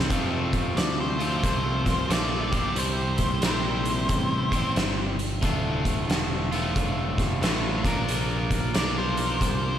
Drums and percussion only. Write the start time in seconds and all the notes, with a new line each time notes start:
0.10 kick, closed hi-hat
0.53 kick, closed hi-hat
0.77 snare, closed hi-hat
1.20 closed hi-hat
1.44 kick, closed hi-hat
1.86 kick, snare, closed hi-hat
2.10 snare, closed hi-hat
2.53 kick, closed hi-hat
2.76 closed hi-hat
3.18 kick, closed hi-hat
3.42 snare, closed hi-hat
3.85 closed hi-hat
4.09 kick, closed hi-hat
4.52 kick, closed hi-hat
4.76 snare, closed hi-hat
5.19 closed hi-hat
5.42 kick, closed hi-hat
5.85 kick, closed hi-hat
6.10 snare, closed hi-hat
6.52 closed hi-hat
6.76 kick, closed hi-hat
7.18 kick, snare, closed hi-hat
7.43 snare, closed hi-hat
7.85 kick, closed hi-hat
8.09 closed hi-hat
8.51 kick, closed hi-hat
8.74 snare, closed hi-hat
9.17 closed hi-hat
9.41 kick, closed hi-hat